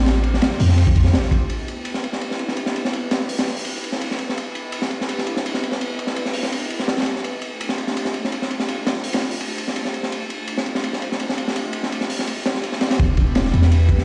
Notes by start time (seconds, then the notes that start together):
Already playing: A1
0.06 A3 D4 F4 G4 C5, snare, ride
0.23 ride
0.34 snare
0.42 snare, ride
0.51 snare
0.60 F2, open hi-hat
0.69 snare
0.78 ride
0.87 kick
0.96 kick, ride
1.05 snare
1.14 A1, snare, ride
1.23 snare
1.31 kick, ride
1.50 B3 D4 E4 G4 B4, ride
1.68 ride
1.85 ride
1.94 snare
2.04 ride
2.13 snare
2.21 ride
2.31 snare
2.39 ride
2.48 snare
2.57 ride
2.66 snare
2.76 ride
2.85 snare
2.93 ride
3.11 snare, ride
3.21 snare
3.29 open hi-hat
3.39 snare, ride
3.47 snare
3.57 open hi-hat
3.65 ride
3.84 ride
3.92 snare
4.01 ride
4.11 snare
4.18 ride
4.29 snare
4.37 B3 D4 E4 G4 B4, ride
4.55 ride
4.72 ride
4.82 snare
4.91 ride
5.01 snare
5.09 ride
5.18 snare
5.27 ride
5.37 snare
5.46 ride
5.54 snare
5.63 ride
5.72 snare
5.81 ride
5.99 ride
6.07 snare
6.16 ride
6.25 snare
6.33 open hi-hat
6.43 snare
6.52 ride
6.70 ride
6.79 snare
6.88 snare, ride
6.98 snare, ride
7.02 snare, ride
7.06 ride
7.16 snare
7.24 A3 D4 F4 G4 C5, ride
7.42 ride
7.61 ride
7.69 snare
7.78 ride
7.87 snare
7.97 ride
8.05 snare
8.14 ride
8.25 snare
8.32 ride
8.42 snare
8.51 ride
8.60 snare
8.68 ride
8.87 snare, ride
8.96 snare
9.04 open hi-hat
9.13 snare, ride
9.22 snare
9.31 open hi-hat
9.41 ride
9.58 ride
9.68 snare
9.76 ride
9.85 snare
9.94 ride
10.03 snare
10.12 A3 D4 F4 G4 C5, ride
10.30 ride
10.48 ride
10.58 snare
10.66 ride
10.75 snare
10.84 ride
10.93 snare
11.02 ride
11.12 snare
11.20 ride
11.29 snare
11.38 ride
11.48 snare
11.56 ride
11.73 ride
11.83 snare
11.92 ride
12.01 snare
12.10 open hi-hat
12.19 snare
12.27 ride
12.46 snare, ride
12.55 snare
12.63 ride
12.72 snare
12.81 snare, ride
12.91 snare, ride
12.99 E1 B3 D4 E4 G4 B4, kick, ride, impact
13.17 kick, ride
13.35 snare, ride
13.45 snare
13.54 E2, ride
13.62 B3 D4 E4 G4 B4, snare
13.72 ride
13.89 kick, ride
13.98 snare